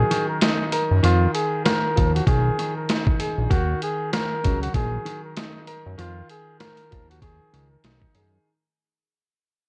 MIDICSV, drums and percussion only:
0, 0, Header, 1, 2, 480
1, 0, Start_track
1, 0, Tempo, 618557
1, 802, Time_signature, 4, 2, 24, 8
1, 7512, End_track
2, 0, Start_track
2, 0, Title_t, "Drums"
2, 87, Note_on_c, 9, 42, 70
2, 165, Note_off_c, 9, 42, 0
2, 322, Note_on_c, 9, 42, 96
2, 328, Note_on_c, 9, 38, 110
2, 400, Note_off_c, 9, 42, 0
2, 405, Note_off_c, 9, 38, 0
2, 562, Note_on_c, 9, 42, 75
2, 639, Note_off_c, 9, 42, 0
2, 806, Note_on_c, 9, 42, 94
2, 883, Note_off_c, 9, 42, 0
2, 1046, Note_on_c, 9, 42, 74
2, 1123, Note_off_c, 9, 42, 0
2, 1285, Note_on_c, 9, 42, 89
2, 1288, Note_on_c, 9, 38, 109
2, 1363, Note_off_c, 9, 42, 0
2, 1366, Note_off_c, 9, 38, 0
2, 1532, Note_on_c, 9, 42, 67
2, 1535, Note_on_c, 9, 36, 83
2, 1609, Note_off_c, 9, 42, 0
2, 1613, Note_off_c, 9, 36, 0
2, 1677, Note_on_c, 9, 42, 53
2, 1754, Note_off_c, 9, 42, 0
2, 1761, Note_on_c, 9, 36, 97
2, 1763, Note_on_c, 9, 42, 88
2, 1838, Note_off_c, 9, 36, 0
2, 1840, Note_off_c, 9, 42, 0
2, 2010, Note_on_c, 9, 42, 68
2, 2087, Note_off_c, 9, 42, 0
2, 2243, Note_on_c, 9, 42, 98
2, 2248, Note_on_c, 9, 38, 106
2, 2320, Note_off_c, 9, 42, 0
2, 2326, Note_off_c, 9, 38, 0
2, 2381, Note_on_c, 9, 36, 101
2, 2459, Note_off_c, 9, 36, 0
2, 2482, Note_on_c, 9, 42, 74
2, 2560, Note_off_c, 9, 42, 0
2, 2723, Note_on_c, 9, 36, 107
2, 2726, Note_on_c, 9, 42, 98
2, 2801, Note_off_c, 9, 36, 0
2, 2803, Note_off_c, 9, 42, 0
2, 2965, Note_on_c, 9, 42, 78
2, 3043, Note_off_c, 9, 42, 0
2, 3205, Note_on_c, 9, 42, 88
2, 3207, Note_on_c, 9, 38, 107
2, 3282, Note_off_c, 9, 42, 0
2, 3285, Note_off_c, 9, 38, 0
2, 3449, Note_on_c, 9, 42, 67
2, 3454, Note_on_c, 9, 36, 83
2, 3527, Note_off_c, 9, 42, 0
2, 3532, Note_off_c, 9, 36, 0
2, 3593, Note_on_c, 9, 42, 52
2, 3670, Note_off_c, 9, 42, 0
2, 3680, Note_on_c, 9, 36, 98
2, 3680, Note_on_c, 9, 42, 87
2, 3758, Note_off_c, 9, 36, 0
2, 3758, Note_off_c, 9, 42, 0
2, 3927, Note_on_c, 9, 42, 70
2, 4005, Note_off_c, 9, 42, 0
2, 4163, Note_on_c, 9, 42, 99
2, 4168, Note_on_c, 9, 38, 112
2, 4240, Note_off_c, 9, 42, 0
2, 4246, Note_off_c, 9, 38, 0
2, 4402, Note_on_c, 9, 42, 72
2, 4479, Note_off_c, 9, 42, 0
2, 4646, Note_on_c, 9, 42, 91
2, 4723, Note_off_c, 9, 42, 0
2, 4885, Note_on_c, 9, 42, 73
2, 4963, Note_off_c, 9, 42, 0
2, 5124, Note_on_c, 9, 42, 91
2, 5127, Note_on_c, 9, 38, 103
2, 5202, Note_off_c, 9, 42, 0
2, 5204, Note_off_c, 9, 38, 0
2, 5255, Note_on_c, 9, 42, 51
2, 5333, Note_off_c, 9, 42, 0
2, 5370, Note_on_c, 9, 42, 65
2, 5375, Note_on_c, 9, 36, 83
2, 5447, Note_off_c, 9, 42, 0
2, 5452, Note_off_c, 9, 36, 0
2, 5515, Note_on_c, 9, 42, 53
2, 5593, Note_off_c, 9, 42, 0
2, 5601, Note_on_c, 9, 36, 98
2, 5603, Note_on_c, 9, 42, 87
2, 5678, Note_off_c, 9, 36, 0
2, 5680, Note_off_c, 9, 42, 0
2, 5849, Note_on_c, 9, 42, 70
2, 5926, Note_off_c, 9, 42, 0
2, 6083, Note_on_c, 9, 42, 99
2, 6088, Note_on_c, 9, 38, 110
2, 6161, Note_off_c, 9, 42, 0
2, 6166, Note_off_c, 9, 38, 0
2, 6221, Note_on_c, 9, 36, 95
2, 6299, Note_off_c, 9, 36, 0
2, 6322, Note_on_c, 9, 42, 75
2, 6400, Note_off_c, 9, 42, 0
2, 7512, End_track
0, 0, End_of_file